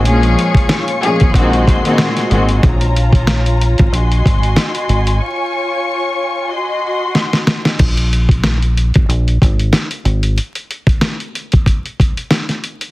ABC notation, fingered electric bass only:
X:1
M:4/4
L:1/16
Q:"Swing 16ths" 1/4=93
K:Abmix
V:1 name="Fingered electric bass" clef=bass
B,,,2 z4 z A,,, B,,,2 z4 A,,,2 | B,,,6- B,,, A,,, B,,,2 A,,,2 z2 A,,,2 | z16 | B,,,6- B,,, A,,, B,,,2 A,,,2 z2 A,,,2 |
z16 |]